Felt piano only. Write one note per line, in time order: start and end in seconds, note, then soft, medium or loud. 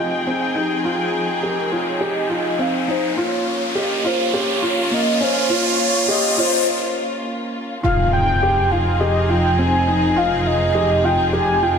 0.00 0.23 F4 medium
0.27 0.53 C4 medium
0.55 0.81 D#4 medium
0.85 1.36 F4 medium
1.43 1.69 G4 medium
1.72 1.98 F4 medium
2.01 2.27 G4 medium
2.30 2.56 F4 medium
2.59 2.85 C4 medium
2.88 3.14 D#4 medium
3.17 3.69 F4 medium
3.75 4.02 G4 medium
4.05 4.31 F4 medium
4.34 4.60 G4 medium
4.63 4.89 F4 medium
4.91 5.18 A#3 medium
5.20 5.47 C#4 medium
5.50 6.02 F4 medium
6.09 6.35 G4 medium
6.38 6.64 F4 medium
7.83 8.35 F4 medium
8.43 8.68 G4 medium
8.72 8.97 F4 medium
9.01 9.26 G4 medium
9.29 9.55 F4 medium
9.59 9.84 C4 medium
9.87 10.13 D#4 medium
10.16 10.68 F4 medium
10.75 11.01 G4 medium
11.04 11.30 F4 medium
11.33 11.59 G4 medium
11.63 11.79 F4 medium